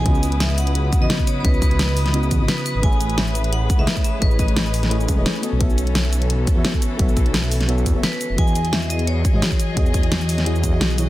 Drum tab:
HH |x-xxx-xxx-x-x-x-|x-xxx-oxx-x-x-x-|x-xxx-xxx-x-x-x-|x-xxx-oxx-x-x-x-|
SH |-xx--xx---x--xx-|-xx--xx--xx--xx-|-xx--xx---x--xx-|-xx--xx--xx--xx-|
SD |----o-------o---|----o--o----o---|----o-------o---|----o--o----o---|
BD |o---------o--o--|o-o-------o-----|o---------o--o--|o-o-------o-----|

HH |x-xxx-xxx-x-x-x-|x-xxx-oxx-x-x-x-|x-xxx-xxx-x-x-x-|x-xxx-oxx-x-x-x-|
SH |-xx--xx---x--xx-|-xx--xx--xx--xx-|-xx--xx---x--xx-|-xx--xx--xx--xx-|
SD |----o-------o---|----o--o----o---|----o-------o---|----o--o----o---|
BD |o---------o--o--|o-o-------o-----|o---------o--o--|o-o-------o-----|